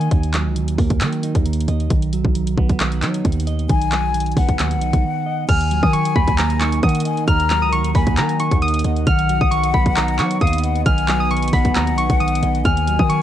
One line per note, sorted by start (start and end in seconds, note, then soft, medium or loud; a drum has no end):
0.00 0.11 A#3 loud
0.00 0.56 D#4 medium
0.00 1.01 D#5 medium
0.00 0.10 G#5 medium
0.00 closed hi-hat soft
0.11 0.47 D#2 loud
0.11 0.55 D#3 medium
0.11 kick loud
0.11 closed hi-hat medium
0.23 closed hi-hat medium
0.34 1.46 F#3 medium
0.34 clap loud
0.34 closed hi-hat medium
0.46 0.64 C#2 loud
0.56 1.00 D#3 medium
0.56 closed hi-hat medium
0.62 0.78 D#2 loud
0.68 closed hi-hat medium
0.78 1.02 D#2 loud
0.78 1.91 A#3 loud
0.78 kick medium
0.78 open hi-hat medium
0.90 kick loud
0.90 closed hi-hat medium
1.01 1.44 D#3 medium
1.01 1.33 D#3 loud
1.01 clap loud
1.01 closed hi-hat medium
1.13 closed hi-hat medium
1.23 1.90 D#4 medium
1.23 closed hi-hat medium
1.35 1.67 D#2 loud
1.35 kick loud
1.35 closed hi-hat medium
1.45 1.89 D#3 medium
1.45 closed hi-hat medium
1.53 closed hi-hat medium
1.61 closed hi-hat medium
1.68 1.90 D#2 loud
1.68 1.91 D#5 medium
1.68 closed hi-hat medium
1.80 closed hi-hat soft
1.90 2.23 B1 loud
1.90 2.34 D#3 medium
1.90 kick loud
1.90 closed hi-hat medium
2.02 closed hi-hat medium
2.13 3.25 F#3 medium
2.13 closed hi-hat medium
2.25 2.56 B1 loud
2.25 kick medium
2.35 2.79 D#3 medium
2.35 closed hi-hat medium
2.47 closed hi-hat medium
2.57 3.04 B1 loud
2.57 3.70 B3 medium
2.57 kick loud
2.69 kick medium
2.69 closed hi-hat medium
2.80 3.23 D#3 medium
2.80 clap loud
2.80 closed hi-hat medium
2.92 closed hi-hat medium
3.02 3.24 F#3 loud
3.02 4.14 D#4 medium
3.02 clap medium
3.02 closed hi-hat medium
3.14 closed hi-hat medium
3.25 3.68 D#2 loud
3.25 3.68 D#3 medium
3.25 kick medium
3.25 closed hi-hat medium
3.32 closed hi-hat medium
3.40 closed hi-hat medium
3.47 4.59 D#5 medium
3.47 closed hi-hat medium
3.59 closed hi-hat soft
3.69 4.34 B1 loud
3.69 4.13 D#3 medium
3.69 4.33 G#5 loud
3.69 kick loud
3.69 closed hi-hat medium
3.81 closed hi-hat medium
3.92 5.04 F#3 medium
3.92 clap loud
3.92 closed hi-hat medium
4.14 4.58 D#3 medium
4.14 closed hi-hat medium
4.20 closed hi-hat medium
4.26 closed hi-hat medium
4.32 closed hi-hat soft
4.37 4.61 B1 loud
4.37 5.49 B3 medium
4.37 5.45 F#5 medium
4.37 kick loud
4.37 open hi-hat medium
4.49 kick loud
4.49 closed hi-hat medium
4.59 4.78 D#2 loud
4.59 5.03 D#3 medium
4.59 clap loud
4.59 closed hi-hat medium
4.71 closed hi-hat medium
4.76 4.93 B1 loud
4.81 5.49 D#4 medium
4.81 closed hi-hat medium
4.93 5.03 B1 loud
4.93 kick loud
4.93 closed hi-hat medium
5.04 5.47 D#3 medium
5.26 5.49 D#5 medium
5.48 5.82 D#2 loud
5.48 5.92 D#3 medium
5.48 9.03 D#3 medium
5.48 9.03 D#4 medium
5.48 9.03 A#4 medium
5.48 10.82 F#5 loud
5.48 6.79 G#5 loud
5.48 5.81 F6 medium
5.48 kick loud
5.48 closed hi-hat medium
5.48 crash loud
5.61 closed hi-hat medium
5.71 6.83 F#3 medium
5.71 closed hi-hat medium
5.83 6.14 D#3 loud
5.83 5.92 D#6 medium
5.83 kick medium
5.93 6.37 D#3 medium
5.93 6.12 C#6 medium
5.93 closed hi-hat medium
6.05 closed hi-hat medium
6.16 6.80 D#2 loud
6.16 7.28 A#3 loud
6.16 6.35 B5 medium
6.16 kick loud
6.27 kick loud
6.27 closed hi-hat medium
6.38 6.82 D#3 medium
6.38 6.57 A#5 medium
6.38 clap loud
6.38 closed hi-hat medium
6.50 closed hi-hat medium
6.60 7.72 D#4 medium
6.60 6.80 C#6 medium
6.60 clap medium
6.60 closed hi-hat medium
6.72 closed hi-hat medium
6.83 7.26 D#3 medium
6.83 7.26 D#3 loud
6.83 7.04 F#5 medium
6.83 7.02 D#6 medium
6.83 kick medium
6.83 closed hi-hat soft
6.89 closed hi-hat medium
6.95 closed hi-hat medium
7.00 closed hi-hat medium
7.05 8.17 D#5 medium
7.05 7.27 G#5 medium
7.05 closed hi-hat medium
7.17 closed hi-hat soft
7.28 7.63 D#2 loud
7.28 7.71 D#3 medium
7.28 7.91 A#5 loud
7.28 7.60 F6 loud
7.28 kick loud
7.28 closed hi-hat medium
7.40 closed hi-hat medium
7.50 8.62 F#3 medium
7.50 clap loud
7.50 closed hi-hat medium
7.62 7.80 C#2 loud
7.62 7.71 D#6 medium
7.72 8.16 D#3 medium
7.72 7.92 C#6 medium
7.72 closed hi-hat medium
7.78 7.94 D#2 loud
7.84 closed hi-hat medium
7.95 8.19 D#2 loud
7.95 9.07 A#3 loud
7.95 8.58 G#5 medium
7.95 8.14 B5 medium
7.95 kick loud
7.95 open hi-hat medium
8.07 kick loud
8.07 closed hi-hat medium
8.17 8.61 D#3 medium
8.17 8.50 D#3 loud
8.17 8.37 A#5 medium
8.17 clap loud
8.17 closed hi-hat medium
8.29 closed hi-hat medium
8.40 9.07 D#4 medium
8.40 8.59 C#6 medium
8.40 closed hi-hat medium
8.52 8.83 D#2 loud
8.52 kick loud
8.52 closed hi-hat medium
8.62 9.05 D#3 medium
8.62 8.81 D#6 medium
8.62 closed hi-hat soft
8.68 closed hi-hat medium
8.74 closed hi-hat medium
8.79 closed hi-hat medium
8.84 9.06 D#2 loud
8.84 9.07 D#5 medium
8.84 closed hi-hat medium
8.96 closed hi-hat soft
9.07 9.40 B1 loud
9.07 9.50 D#3 medium
9.07 12.61 B3 medium
9.07 12.62 B4 medium
9.07 12.61 D#5 medium
9.07 10.37 F#5 loud
9.07 9.39 F6 loud
9.07 kick loud
9.07 closed hi-hat medium
9.19 closed hi-hat medium
9.29 10.41 F#3 medium
9.29 closed hi-hat medium
9.41 9.73 B1 loud
9.41 9.50 D#6 medium
9.41 kick medium
9.51 9.95 D#3 medium
9.51 9.70 C#6 medium
9.51 closed hi-hat medium
9.64 closed hi-hat medium
9.74 10.20 B1 loud
9.74 10.86 B3 medium
9.74 9.93 B5 medium
9.74 kick loud
9.86 kick loud
9.86 closed hi-hat medium
9.96 10.40 D#3 medium
9.96 10.15 A#5 medium
9.96 clap loud
9.96 closed hi-hat medium
10.08 closed hi-hat medium
10.19 10.40 F#3 loud
10.19 11.31 D#4 medium
10.19 10.38 C#6 medium
10.19 clap medium
10.19 closed hi-hat medium
10.31 closed hi-hat medium
10.41 10.84 D#2 loud
10.41 10.85 D#3 medium
10.41 10.62 F5 medium
10.41 10.60 D#6 medium
10.41 kick medium
10.41 closed hi-hat soft
10.47 closed hi-hat medium
10.53 closed hi-hat medium
10.58 closed hi-hat medium
10.63 11.75 D#5 medium
10.63 10.85 F#5 medium
10.63 closed hi-hat medium
10.76 closed hi-hat soft
10.86 11.50 B1 loud
10.86 11.29 D#3 medium
10.86 11.49 G#5 loud
10.86 12.63 G#5 medium
10.86 11.18 F6 loud
10.86 kick loud
10.86 closed hi-hat medium
10.98 closed hi-hat medium
11.08 12.20 F#3 medium
11.08 clap loud
11.08 closed hi-hat medium
11.20 11.29 D#6 medium
11.31 11.74 D#3 medium
11.31 11.50 C#6 medium
11.31 closed hi-hat soft
11.37 closed hi-hat medium
11.43 closed hi-hat medium
11.48 closed hi-hat medium
11.53 11.77 B1 loud
11.53 12.65 B3 medium
11.53 12.61 F#5 medium
11.53 11.72 B5 medium
11.53 kick loud
11.53 open hi-hat medium
11.65 kick loud
11.65 closed hi-hat medium
11.75 11.94 D#2 loud
11.75 12.19 D#3 medium
11.75 11.95 A#5 medium
11.75 clap loud
11.75 closed hi-hat medium
11.87 closed hi-hat medium
11.93 12.09 B1 loud
11.98 12.65 D#4 medium
11.98 12.17 C#6 medium
11.98 closed hi-hat medium
12.10 12.41 B1 loud
12.10 kick loud
12.10 closed hi-hat medium
12.20 12.64 D#3 medium
12.20 12.39 D#6 medium
12.20 closed hi-hat soft
12.28 closed hi-hat medium
12.35 closed hi-hat medium
12.43 12.64 B1 loud
12.43 12.65 D#5 medium
12.43 closed hi-hat medium
12.55 closed hi-hat soft
12.65 12.98 D#2 loud
12.65 13.09 D#3 medium
12.65 13.22 D#3 medium
12.65 13.22 D#4 medium
12.65 13.22 A#4 medium
12.65 13.22 F#5 loud
12.65 13.22 G#5 loud
12.65 12.97 F6 medium
12.65 kick loud
12.65 closed hi-hat medium
12.77 closed hi-hat medium
12.88 13.22 F#3 medium
12.88 closed hi-hat medium
12.99 13.22 D#3 loud
12.99 13.08 D#6 medium
12.99 kick medium
13.10 13.22 D#3 medium
13.10 13.22 C#6 medium
13.10 closed hi-hat medium